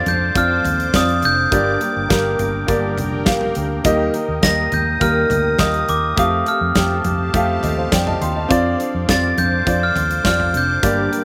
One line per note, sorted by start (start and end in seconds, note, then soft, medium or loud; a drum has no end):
0.00 0.35 C4 loud
0.00 0.36 F4 medium
0.00 1.49 C5 medium
0.00 0.37 D5 loud
0.00 1.48 F5 medium
0.00 3.80 D6 medium
0.06 0.30 F2 medium
0.06 0.35 C4 soft
0.06 0.35 D4 soft
0.06 0.35 A4 medium
0.06 0.37 G6 medium
0.06 closed hi-hat medium
0.06 floor tom medium
0.35 0.59 F2 medium
0.35 0.94 F3 medium
0.35 0.93 A3 medium
0.35 0.87 C4 medium
0.35 0.93 C4 medium
0.35 0.95 D4 medium
0.35 0.87 F4 medium
0.35 0.94 A4 medium
0.35 0.88 D5 medium
0.35 0.96 F6 medium
0.35 kick loud
0.35 closed hi-hat medium
0.65 0.89 D#2 medium
0.65 closed hi-hat medium
0.65 floor tom medium
0.80 closed hi-hat soft
0.93 1.25 F2 medium
0.93 1.23 A3 medium
0.93 1.45 C4 medium
0.93 1.23 C4 medium
0.93 1.23 D4 medium
0.93 1.45 F4 medium
0.93 1.22 A4 medium
0.93 1.46 D5 medium
0.93 1.25 D#6 medium
0.93 kick loud
0.93 snare loud
0.93 closed hi-hat medium
1.09 closed hi-hat soft
1.22 1.47 F1 medium
1.22 1.53 C4 soft
1.22 1.52 D4 medium
1.22 1.52 A4 medium
1.22 2.95 G6 medium
1.22 closed hi-hat medium
1.51 1.76 G1 loud
1.51 1.81 G2 medium
1.51 2.35 G2 medium
1.51 1.81 D3 medium
1.51 1.81 G3 medium
1.51 2.03 A#3 medium
1.51 1.81 A#3 medium
1.51 1.80 D4 medium
1.51 2.04 G4 medium
1.51 6.14 A#4 medium
1.51 1.79 A#4 medium
1.51 2.04 D5 medium
1.51 6.14 G5 medium
1.51 kick loud
1.51 closed hi-hat medium
1.81 2.08 G3 soft
1.81 2.09 A#3 soft
1.81 2.10 D4 medium
1.81 2.10 A#4 soft
1.81 closed hi-hat medium
1.97 2.08 G1 medium
2.09 2.34 G1 loud
2.09 2.39 G3 medium
2.09 2.61 A#3 medium
2.09 2.39 A#3 medium
2.09 2.38 D4 medium
2.09 2.62 G4 medium
2.09 2.62 A#4 medium
2.09 2.37 A#4 medium
2.09 kick loud
2.09 snare loud
2.09 closed hi-hat medium
2.38 2.63 G1 loud
2.38 2.67 G3 soft
2.38 2.67 A#3 soft
2.38 2.68 D4 medium
2.38 2.68 A#4 medium
2.38 closed hi-hat medium
2.38 floor tom medium
2.67 2.98 G1 medium
2.67 3.26 G2 medium
2.67 3.26 D3 medium
2.67 3.26 G3 medium
2.67 3.19 A#3 medium
2.67 3.27 A#3 medium
2.67 3.26 D4 medium
2.67 3.20 G4 medium
2.67 3.28 A#4 medium
2.67 3.20 D5 medium
2.67 kick loud
2.67 closed hi-hat medium
2.98 3.27 F1 medium
2.98 closed hi-hat medium
2.98 floor tom medium
3.25 3.50 G1 medium
3.25 3.55 G3 medium
3.25 3.77 A#3 medium
3.25 3.56 A#3 medium
3.25 3.55 D4 medium
3.25 3.78 G4 medium
3.25 3.55 A#4 medium
3.25 3.78 F5 medium
3.25 kick loud
3.25 snare loud
3.25 closed hi-hat medium
3.41 floor tom medium
3.55 3.80 D2 medium
3.55 3.84 G3 soft
3.55 3.84 A#3 soft
3.55 3.85 D4 medium
3.55 3.85 A#4 medium
3.55 closed hi-hat medium
3.84 4.09 D#2 loud
3.84 4.14 D#3 medium
3.84 4.68 D#3 medium
3.84 4.14 G3 medium
3.84 4.36 A#3 medium
3.84 4.14 A#3 medium
3.84 4.14 D#4 medium
3.84 4.37 G4 medium
3.84 4.13 A#4 medium
3.84 4.37 D#5 loud
3.84 6.15 D#6 medium
3.84 kick loud
3.84 closed hi-hat loud
4.14 4.42 A#3 soft
4.14 4.43 D#4 soft
4.14 4.43 A#4 medium
4.14 closed hi-hat medium
4.29 4.40 D#2 medium
4.42 4.67 D#2 medium
4.42 5.01 G3 medium
4.42 4.94 A#3 medium
4.42 5.01 A#3 medium
4.42 5.01 D#4 medium
4.42 4.94 G4 medium
4.42 5.01 A#4 medium
4.42 4.95 D#5 medium
4.42 4.73 A#6 medium
4.42 kick loud
4.42 snare loud
4.42 closed hi-hat loud
4.72 4.96 D#2 medium
4.72 5.03 G6 medium
4.72 closed hi-hat medium
4.72 floor tom medium
5.00 5.25 D#2 medium
5.00 5.59 D#3 medium
5.00 5.58 G3 medium
5.00 5.52 A#3 medium
5.00 5.58 A#3 medium
5.00 5.59 D#4 medium
5.00 5.53 G4 medium
5.00 5.60 A#4 medium
5.00 5.53 A#4 medium
5.00 5.61 F6 medium
5.00 kick loud
5.00 closed hi-hat medium
5.30 5.54 D2 medium
5.30 closed hi-hat medium
5.30 floor tom medium
5.58 5.83 D#2 medium
5.58 5.88 G3 medium
5.58 6.11 A#3 medium
5.58 5.88 A#3 medium
5.58 5.88 D#4 medium
5.58 6.11 G4 medium
5.58 5.87 A#4 medium
5.58 6.12 D#5 medium
5.58 5.89 D#6 medium
5.58 kick loud
5.58 snare medium
5.58 closed hi-hat medium
5.74 closed hi-hat soft
5.88 6.13 D#2 medium
5.88 6.17 A#3 soft
5.88 6.18 D#4 soft
5.88 6.17 A#4 medium
5.88 6.19 D6 medium
5.88 closed hi-hat medium
6.16 6.41 F2 medium
6.16 6.46 F3 medium
6.16 6.69 A3 medium
6.16 6.47 C4 medium
6.16 6.69 G4 medium
6.16 8.48 G4 medium
6.16 6.47 G4 medium
6.16 6.46 A4 medium
6.16 10.79 F5 medium
6.16 6.70 F5 medium
6.16 8.48 A5 medium
6.16 6.48 D#6 medium
6.16 kick loud
6.16 closed hi-hat medium
6.46 6.75 C4 soft
6.46 6.75 G4 soft
6.46 6.76 A4 medium
6.46 7.02 F6 medium
6.46 closed hi-hat medium
6.61 6.73 F2 medium
6.75 6.99 F2 medium
6.75 7.05 F3 medium
6.75 7.27 A3 medium
6.75 7.05 C4 medium
6.75 7.28 G4 medium
6.75 7.04 G4 medium
6.75 7.03 A4 medium
6.75 7.28 G5 medium
6.75 kick loud
6.75 snare loud
6.75 closed hi-hat medium
7.04 7.29 F2 loud
7.04 7.33 C4 soft
7.04 7.33 G4 soft
7.04 7.33 A4 medium
7.04 closed hi-hat medium
7.04 floor tom medium
7.33 7.58 F2 medium
7.33 7.91 F3 medium
7.33 7.85 A3 medium
7.33 7.92 C4 medium
7.33 7.92 G4 medium
7.33 7.86 G4 medium
7.33 7.93 A4 medium
7.33 7.64 F5 medium
7.33 kick loud
7.33 closed hi-hat medium
7.63 7.87 D#2 medium
7.63 7.77 A4 soft
7.63 7.77 D#5 soft
7.63 closed hi-hat medium
7.63 floor tom medium
7.77 7.92 C5 medium
7.77 7.91 F5 medium
7.91 8.16 F2 medium
7.91 8.21 F3 medium
7.91 8.21 C4 medium
7.91 8.21 G4 medium
7.91 8.20 A4 medium
7.91 8.06 D5 medium
7.91 8.06 G5 medium
7.91 kick loud
7.91 snare loud
7.91 closed hi-hat medium
8.07 8.21 D#5 medium
8.07 8.21 A5 medium
8.07 floor tom medium
8.21 8.45 D#2 medium
8.21 8.48 C4 soft
8.21 8.50 G4 soft
8.21 8.49 A4 medium
8.21 8.35 G5 medium
8.21 8.35 C6 medium
8.21 closed hi-hat medium
8.36 8.64 D#5 medium
8.36 8.64 A5 medium
8.49 8.74 F2 loud
8.49 8.79 F3 medium
8.49 9.01 C4 loud
8.49 8.79 C4 medium
8.49 8.78 D4 medium
8.49 9.02 F4 loud
8.49 8.77 A4 medium
8.49 10.81 C5 medium
8.49 9.02 D5 loud
8.49 11.24 D6 medium
8.49 kick loud
8.49 closed hi-hat loud
8.78 9.07 C4 soft
8.78 9.08 D4 medium
8.78 9.08 A4 medium
8.78 closed hi-hat medium
8.95 9.06 F2 medium
9.08 9.33 F2 medium
9.08 9.37 F3 medium
9.08 9.60 C4 medium
9.08 9.38 C4 medium
9.08 9.36 D4 medium
9.08 9.60 F4 medium
9.08 9.36 A4 medium
9.08 9.61 D5 medium
9.08 9.39 A6 medium
9.08 kick loud
9.08 snare loud
9.08 closed hi-hat medium
9.37 9.62 F2 loud
9.37 9.65 C4 soft
9.37 9.65 D4 soft
9.37 9.66 A4 medium
9.37 9.83 G6 medium
9.37 closed hi-hat medium
9.37 floor tom medium
9.65 9.91 F2 medium
9.65 10.23 F3 medium
9.65 10.18 C4 medium
9.65 10.24 C4 medium
9.65 10.25 D4 medium
9.65 10.18 F4 medium
9.65 10.25 A4 medium
9.65 10.19 D5 medium
9.65 kick loud
9.65 closed hi-hat medium
9.83 10.26 F6 medium
9.96 10.20 D#2 medium
9.96 closed hi-hat medium
9.96 floor tom medium
10.11 closed hi-hat medium
10.24 10.55 F2 medium
10.24 10.54 F3 medium
10.24 10.76 C4 medium
10.24 10.54 C4 medium
10.24 10.53 D4 medium
10.24 10.76 F4 medium
10.24 10.52 A4 medium
10.24 10.77 D5 medium
10.24 10.56 F6 medium
10.24 kick loud
10.24 snare loud
10.24 closed hi-hat medium
10.40 floor tom medium
10.54 10.78 F1 medium
10.54 10.83 C4 soft
10.54 10.82 D4 soft
10.54 10.83 A4 medium
10.54 11.24 G6 medium
10.54 closed hi-hat medium
10.82 11.07 G1 medium
10.82 11.12 G2 medium
10.82 11.24 G2 medium
10.82 11.12 D3 medium
10.82 11.12 G3 medium
10.82 11.24 A#3 medium
10.82 11.12 A#3 medium
10.82 11.11 D4 medium
10.82 11.24 G4 medium
10.82 11.10 G4 medium
10.82 11.24 A#4 medium
10.82 11.24 D5 medium
10.82 11.24 G5 medium
10.82 kick loud
10.82 closed hi-hat loud
11.11 11.24 G3 soft
11.11 11.24 A#3 soft
11.11 11.24 D4 medium
11.11 11.24 G4 medium
11.11 closed hi-hat medium